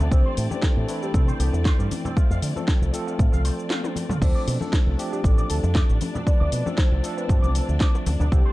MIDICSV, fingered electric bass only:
0, 0, Header, 1, 3, 480
1, 0, Start_track
1, 0, Key_signature, -1, "minor"
1, 0, Tempo, 512821
1, 109, Time_signature, 4, 2, 24, 8
1, 7980, End_track
2, 0, Start_track
2, 0, Title_t, "Fingered electric bass"
2, 0, Program_c, 0, 33
2, 108, Note_on_c, 0, 36, 101
2, 190, Note_off_c, 0, 36, 0
2, 351, Note_on_c, 0, 45, 100
2, 432, Note_off_c, 0, 45, 0
2, 718, Note_on_c, 0, 45, 91
2, 789, Note_off_c, 0, 45, 0
2, 1068, Note_on_c, 0, 48, 92
2, 1228, Note_off_c, 0, 48, 0
2, 1306, Note_on_c, 0, 36, 87
2, 1389, Note_off_c, 0, 36, 0
2, 1433, Note_on_c, 0, 40, 80
2, 1583, Note_off_c, 0, 40, 0
2, 1675, Note_on_c, 0, 43, 84
2, 1748, Note_off_c, 0, 43, 0
2, 2156, Note_on_c, 0, 41, 106
2, 2228, Note_off_c, 0, 41, 0
2, 2265, Note_on_c, 0, 50, 98
2, 2349, Note_off_c, 0, 50, 0
2, 2636, Note_on_c, 0, 36, 89
2, 2708, Note_off_c, 0, 36, 0
2, 2989, Note_on_c, 0, 45, 109
2, 3071, Note_off_c, 0, 45, 0
2, 3120, Note_on_c, 0, 36, 90
2, 3266, Note_off_c, 0, 36, 0
2, 3947, Note_on_c, 0, 38, 95
2, 4030, Note_off_c, 0, 38, 0
2, 4188, Note_on_c, 0, 47, 98
2, 4270, Note_off_c, 0, 47, 0
2, 4556, Note_on_c, 0, 36, 88
2, 4628, Note_off_c, 0, 36, 0
2, 4906, Note_on_c, 0, 33, 94
2, 5066, Note_off_c, 0, 33, 0
2, 5149, Note_on_c, 0, 38, 87
2, 5231, Note_off_c, 0, 38, 0
2, 5274, Note_on_c, 0, 41, 81
2, 5423, Note_off_c, 0, 41, 0
2, 5517, Note_on_c, 0, 33, 87
2, 5589, Note_off_c, 0, 33, 0
2, 5998, Note_on_c, 0, 38, 106
2, 6069, Note_off_c, 0, 38, 0
2, 6106, Note_on_c, 0, 47, 99
2, 6189, Note_off_c, 0, 47, 0
2, 6476, Note_on_c, 0, 36, 87
2, 6548, Note_off_c, 0, 36, 0
2, 6828, Note_on_c, 0, 43, 110
2, 6910, Note_off_c, 0, 43, 0
2, 6957, Note_on_c, 0, 36, 93
2, 7105, Note_off_c, 0, 36, 0
2, 7195, Note_on_c, 0, 38, 78
2, 7267, Note_off_c, 0, 38, 0
2, 7548, Note_on_c, 0, 38, 84
2, 7630, Note_off_c, 0, 38, 0
2, 7674, Note_on_c, 0, 38, 91
2, 7747, Note_off_c, 0, 38, 0
2, 7789, Note_on_c, 0, 36, 101
2, 7871, Note_off_c, 0, 36, 0
2, 7980, End_track
3, 0, Start_track
3, 0, Title_t, "Muted fingered electric bass strokes"
3, 2027, Note_on_c, 9, 29, 41
3, 2120, Note_off_c, 9, 29, 0
3, 5866, Note_on_c, 9, 29, 42
3, 5959, Note_off_c, 9, 29, 0
3, 7980, End_track
0, 0, End_of_file